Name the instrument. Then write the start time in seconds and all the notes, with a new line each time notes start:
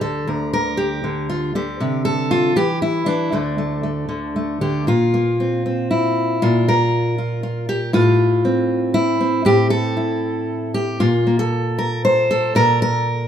steel-string acoustic guitar
Already playing: D2
0.01 D3 A4
0.27 D2 A#4
0.53 A#4
0.77 G4
1.04 D3
1.30 F4
1.55 D3 G4
1.80 C3 G4
2.05 A4
2.31 F4
2.56 E3 G4
2.82 E4
3.06 E3 D4
3.32 D2 D3 A3
3.58 A3
3.83 A3
4.09 D3
4.36 A3
4.61 D3 G4
4.87 A#2 F4
5.14 A#3
5.40 C4
5.66 C4
5.91 E4
6.42 A#2 F4
6.68 A#4
7.18 F4
7.43 F4
7.69 G4
7.93 A2 F4
8.45 C4
8.94 E4
9.21 C4
9.45 A2 G4
9.70 A4
9.97 E4
10.74 G4
11.00 A#2 A#3 F4
11.27 A#3
11.39 A4
11.78 A#4
12.05 C5
12.31 A4
12.55 A#2 A#4
12.82 A#4